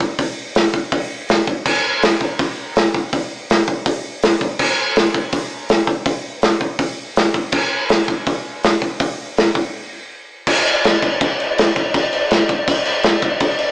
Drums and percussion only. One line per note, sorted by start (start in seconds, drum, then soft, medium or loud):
0.00 kick medium
0.19 kick loud
0.19 open hi-hat medium
0.55 snare loud
0.55 open hi-hat medium
0.74 kick medium
0.92 kick loud
0.92 open hi-hat medium
1.29 snare loud
1.29 open hi-hat medium
1.47 kick medium
1.66 kick loud
1.66 crash loud
2.02 snare loud
2.02 open hi-hat medium
2.21 kick medium
2.39 kick loud
2.39 open hi-hat medium
2.76 snare loud
2.76 open hi-hat medium
2.94 kick medium
3.13 kick loud
3.13 open hi-hat medium
3.50 snare loud
3.50 open hi-hat medium
3.68 kick medium
3.86 kick loud
3.86 open hi-hat medium
4.22 snare loud
4.22 open hi-hat medium
4.41 kick medium
4.59 kick loud
4.59 crash loud
4.96 snare loud
4.96 open hi-hat medium
5.14 kick medium
5.32 kick loud
5.32 open hi-hat medium
5.69 snare loud
5.69 open hi-hat medium
5.87 kick medium
6.06 kick loud
6.06 open hi-hat medium
6.42 snare loud
6.42 open hi-hat medium
6.61 kick medium
6.79 kick loud
6.79 open hi-hat medium
7.16 snare loud
7.16 open hi-hat medium
7.34 kick medium
7.52 kick loud
7.52 crash loud
7.89 snare loud
7.89 open hi-hat medium
8.08 kick medium
8.27 kick loud
8.27 open hi-hat medium
8.63 snare loud
8.63 open hi-hat medium
8.82 kick medium
9.00 kick loud
9.00 open hi-hat medium
9.37 snare loud
9.37 open hi-hat medium
9.55 kick medium
10.47 kick loud
10.47 crash loud
10.65 crash medium
10.84 snare loud
10.84 crash medium
11.02 kick medium
11.02 crash medium
11.21 kick loud
11.21 crash medium
11.40 crash medium
11.58 snare loud
11.58 crash loud
11.76 kick medium
11.76 crash medium
11.94 kick loud
11.94 crash medium
12.13 crash medium
12.31 snare loud
12.31 crash medium
12.49 kick medium
12.49 crash medium
12.68 kick loud
12.68 crash loud
12.85 crash medium
13.03 snare loud
13.03 crash medium
13.22 kick medium
13.22 crash medium
13.40 kick loud
13.40 crash loud
13.59 crash medium